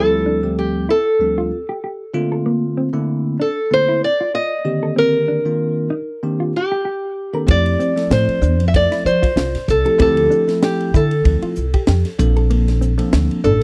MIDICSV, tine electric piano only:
0, 0, Header, 1, 2, 480
1, 0, Start_track
1, 0, Tempo, 626959
1, 1889, Time_signature, 4, 2, 24, 8
1, 10437, End_track
2, 0, Start_track
2, 0, Title_t, "Tine electric piano"
2, 0, Program_c, 0, 4
2, 0, Note_on_c, 0, 38, 94
2, 0, Note_on_c, 0, 53, 76
2, 0, Note_on_c, 0, 55, 89
2, 0, Note_on_c, 0, 57, 82
2, 0, Note_on_c, 0, 60, 78
2, 0, Note_on_c, 0, 64, 96
2, 304, Note_off_c, 0, 38, 0
2, 304, Note_off_c, 0, 57, 0
2, 305, Note_off_c, 0, 53, 0
2, 305, Note_off_c, 0, 64, 0
2, 306, Note_off_c, 0, 55, 0
2, 306, Note_off_c, 0, 60, 0
2, 328, Note_on_c, 0, 38, 67
2, 330, Note_on_c, 0, 53, 60
2, 331, Note_on_c, 0, 57, 60
2, 332, Note_on_c, 0, 55, 59
2, 332, Note_on_c, 0, 67, 82
2, 334, Note_on_c, 0, 60, 66
2, 658, Note_off_c, 0, 38, 0
2, 659, Note_off_c, 0, 53, 0
2, 659, Note_off_c, 0, 57, 0
2, 660, Note_off_c, 0, 55, 0
2, 660, Note_off_c, 0, 67, 0
2, 661, Note_off_c, 0, 60, 0
2, 679, Note_on_c, 0, 60, 26
2, 683, Note_on_c, 0, 65, 29
2, 748, Note_off_c, 0, 60, 0
2, 750, Note_off_c, 0, 65, 0
2, 916, Note_on_c, 0, 38, 67
2, 921, Note_on_c, 0, 53, 61
2, 922, Note_on_c, 0, 55, 55
2, 922, Note_on_c, 0, 57, 62
2, 922, Note_on_c, 0, 60, 60
2, 927, Note_on_c, 0, 62, 72
2, 1146, Note_off_c, 0, 38, 0
2, 1149, Note_off_c, 0, 53, 0
2, 1149, Note_off_c, 0, 55, 0
2, 1149, Note_off_c, 0, 57, 0
2, 1149, Note_off_c, 0, 60, 0
2, 1151, Note_off_c, 0, 62, 0
2, 1163, Note_on_c, 0, 60, 24
2, 1166, Note_on_c, 0, 67, 22
2, 1230, Note_off_c, 0, 60, 0
2, 1231, Note_off_c, 0, 67, 0
2, 1635, Note_on_c, 0, 50, 91
2, 1638, Note_on_c, 0, 57, 83
2, 1639, Note_on_c, 0, 60, 76
2, 1641, Note_on_c, 0, 58, 75
2, 1641, Note_on_c, 0, 65, 104
2, 2204, Note_off_c, 0, 50, 0
2, 2206, Note_off_c, 0, 57, 0
2, 2206, Note_off_c, 0, 60, 0
2, 2207, Note_off_c, 0, 58, 0
2, 2207, Note_off_c, 0, 65, 0
2, 2243, Note_on_c, 0, 50, 95
2, 2243, Note_on_c, 0, 57, 80
2, 2247, Note_on_c, 0, 58, 74
2, 2248, Note_on_c, 0, 64, 91
2, 2249, Note_on_c, 0, 60, 73
2, 2575, Note_off_c, 0, 50, 0
2, 2575, Note_off_c, 0, 57, 0
2, 2577, Note_off_c, 0, 58, 0
2, 2577, Note_off_c, 0, 60, 0
2, 2577, Note_off_c, 0, 64, 0
2, 2594, Note_on_c, 0, 60, 26
2, 2600, Note_on_c, 0, 65, 30
2, 2665, Note_off_c, 0, 60, 0
2, 2668, Note_off_c, 0, 65, 0
2, 2837, Note_on_c, 0, 50, 68
2, 2838, Note_on_c, 0, 58, 61
2, 2840, Note_on_c, 0, 57, 64
2, 2841, Note_on_c, 0, 60, 62
2, 2843, Note_on_c, 0, 64, 68
2, 3065, Note_off_c, 0, 60, 0
2, 3066, Note_off_c, 0, 50, 0
2, 3066, Note_off_c, 0, 58, 0
2, 3068, Note_off_c, 0, 57, 0
2, 3069, Note_off_c, 0, 64, 0
2, 3074, Note_on_c, 0, 60, 25
2, 3084, Note_on_c, 0, 62, 24
2, 3145, Note_off_c, 0, 60, 0
2, 3149, Note_off_c, 0, 62, 0
2, 3557, Note_on_c, 0, 51, 74
2, 3558, Note_on_c, 0, 58, 69
2, 3561, Note_on_c, 0, 67, 81
2, 3562, Note_on_c, 0, 50, 67
2, 3562, Note_on_c, 0, 60, 74
2, 4125, Note_off_c, 0, 51, 0
2, 4125, Note_off_c, 0, 58, 0
2, 4127, Note_off_c, 0, 50, 0
2, 4127, Note_off_c, 0, 60, 0
2, 4127, Note_off_c, 0, 67, 0
2, 4174, Note_on_c, 0, 51, 75
2, 4176, Note_on_c, 0, 58, 59
2, 4177, Note_on_c, 0, 60, 62
2, 4177, Note_on_c, 0, 62, 61
2, 4182, Note_on_c, 0, 65, 76
2, 4500, Note_off_c, 0, 51, 0
2, 4501, Note_off_c, 0, 58, 0
2, 4501, Note_off_c, 0, 60, 0
2, 4501, Note_off_c, 0, 62, 0
2, 4504, Note_off_c, 0, 65, 0
2, 4528, Note_on_c, 0, 62, 33
2, 4530, Note_on_c, 0, 67, 37
2, 4591, Note_off_c, 0, 62, 0
2, 4592, Note_off_c, 0, 67, 0
2, 4768, Note_on_c, 0, 51, 76
2, 4770, Note_on_c, 0, 58, 72
2, 4772, Note_on_c, 0, 60, 76
2, 4772, Note_on_c, 0, 62, 76
2, 4775, Note_on_c, 0, 67, 87
2, 4991, Note_off_c, 0, 51, 0
2, 4992, Note_off_c, 0, 58, 0
2, 4993, Note_off_c, 0, 60, 0
2, 4993, Note_off_c, 0, 62, 0
2, 4995, Note_off_c, 0, 67, 0
2, 5009, Note_on_c, 0, 62, 20
2, 5014, Note_on_c, 0, 67, 24
2, 5072, Note_off_c, 0, 62, 0
2, 5074, Note_off_c, 0, 67, 0
2, 5613, Note_on_c, 0, 51, 59
2, 5615, Note_on_c, 0, 58, 62
2, 5616, Note_on_c, 0, 60, 62
2, 5616, Note_on_c, 0, 62, 60
2, 5617, Note_on_c, 0, 69, 73
2, 5710, Note_off_c, 0, 60, 0
2, 5716, Note_off_c, 0, 51, 0
2, 5716, Note_on_c, 0, 53, 89
2, 5717, Note_off_c, 0, 58, 0
2, 5717, Note_off_c, 0, 62, 0
2, 5717, Note_on_c, 0, 57, 81
2, 5718, Note_off_c, 0, 69, 0
2, 5719, Note_on_c, 0, 60, 86
2, 5721, Note_on_c, 0, 64, 82
2, 5722, Note_on_c, 0, 67, 105
2, 6065, Note_off_c, 0, 53, 0
2, 6065, Note_off_c, 0, 57, 0
2, 6066, Note_off_c, 0, 60, 0
2, 6067, Note_off_c, 0, 64, 0
2, 6068, Note_off_c, 0, 67, 0
2, 6094, Note_on_c, 0, 53, 70
2, 6096, Note_on_c, 0, 57, 67
2, 6096, Note_on_c, 0, 60, 63
2, 6097, Note_on_c, 0, 64, 59
2, 6099, Note_on_c, 0, 69, 82
2, 6420, Note_off_c, 0, 53, 0
2, 6421, Note_off_c, 0, 57, 0
2, 6421, Note_off_c, 0, 60, 0
2, 6422, Note_off_c, 0, 64, 0
2, 6422, Note_off_c, 0, 69, 0
2, 6688, Note_on_c, 0, 53, 64
2, 6690, Note_on_c, 0, 57, 58
2, 6690, Note_on_c, 0, 64, 60
2, 6691, Note_on_c, 0, 60, 59
2, 6695, Note_on_c, 0, 69, 75
2, 6912, Note_off_c, 0, 53, 0
2, 6913, Note_off_c, 0, 57, 0
2, 6913, Note_off_c, 0, 60, 0
2, 6913, Note_off_c, 0, 64, 0
2, 6915, Note_off_c, 0, 69, 0
2, 6931, Note_on_c, 0, 64, 23
2, 6935, Note_on_c, 0, 67, 26
2, 6993, Note_off_c, 0, 64, 0
2, 6995, Note_off_c, 0, 67, 0
2, 7540, Note_on_c, 0, 53, 71
2, 7541, Note_on_c, 0, 57, 61
2, 7541, Note_on_c, 0, 64, 66
2, 7541, Note_on_c, 0, 67, 74
2, 7542, Note_on_c, 0, 60, 62
2, 7632, Note_off_c, 0, 53, 0
2, 7632, Note_off_c, 0, 57, 0
2, 7635, Note_off_c, 0, 60, 0
2, 7636, Note_off_c, 0, 64, 0
2, 7640, Note_off_c, 0, 67, 0
2, 7641, Note_on_c, 0, 53, 90
2, 7641, Note_on_c, 0, 57, 86
2, 7645, Note_on_c, 0, 60, 81
2, 7645, Note_on_c, 0, 64, 83
2, 7648, Note_on_c, 0, 67, 102
2, 7988, Note_off_c, 0, 53, 0
2, 7988, Note_off_c, 0, 57, 0
2, 7990, Note_off_c, 0, 60, 0
2, 7990, Note_off_c, 0, 64, 0
2, 7991, Note_off_c, 0, 67, 0
2, 8017, Note_on_c, 0, 57, 65
2, 8018, Note_on_c, 0, 53, 71
2, 8018, Note_on_c, 0, 64, 71
2, 8019, Note_on_c, 0, 60, 63
2, 8024, Note_on_c, 0, 69, 83
2, 8343, Note_off_c, 0, 53, 0
2, 8343, Note_off_c, 0, 57, 0
2, 8343, Note_off_c, 0, 64, 0
2, 8344, Note_off_c, 0, 60, 0
2, 8346, Note_off_c, 0, 69, 0
2, 8365, Note_on_c, 0, 64, 27
2, 8371, Note_on_c, 0, 69, 29
2, 8431, Note_off_c, 0, 64, 0
2, 8434, Note_off_c, 0, 69, 0
2, 8607, Note_on_c, 0, 53, 75
2, 8607, Note_on_c, 0, 57, 55
2, 8608, Note_on_c, 0, 64, 64
2, 8611, Note_on_c, 0, 60, 60
2, 8614, Note_on_c, 0, 69, 82
2, 8833, Note_off_c, 0, 53, 0
2, 8833, Note_off_c, 0, 57, 0
2, 8833, Note_off_c, 0, 64, 0
2, 8834, Note_off_c, 0, 60, 0
2, 8836, Note_off_c, 0, 69, 0
2, 8845, Note_on_c, 0, 64, 22
2, 8847, Note_on_c, 0, 69, 27
2, 8911, Note_off_c, 0, 64, 0
2, 8912, Note_off_c, 0, 69, 0
2, 9328, Note_on_c, 0, 53, 91
2, 9330, Note_on_c, 0, 60, 76
2, 9332, Note_on_c, 0, 58, 82
2, 9332, Note_on_c, 0, 62, 85
2, 9334, Note_on_c, 0, 69, 102
2, 9893, Note_off_c, 0, 53, 0
2, 9894, Note_off_c, 0, 58, 0
2, 9894, Note_off_c, 0, 60, 0
2, 9895, Note_off_c, 0, 62, 0
2, 9895, Note_off_c, 0, 69, 0
2, 9934, Note_on_c, 0, 60, 78
2, 9935, Note_on_c, 0, 53, 88
2, 9936, Note_on_c, 0, 58, 83
2, 9937, Note_on_c, 0, 62, 86
2, 9938, Note_on_c, 0, 69, 98
2, 10263, Note_off_c, 0, 53, 0
2, 10263, Note_off_c, 0, 58, 0
2, 10263, Note_off_c, 0, 60, 0
2, 10264, Note_off_c, 0, 62, 0
2, 10264, Note_off_c, 0, 69, 0
2, 10437, End_track
0, 0, End_of_file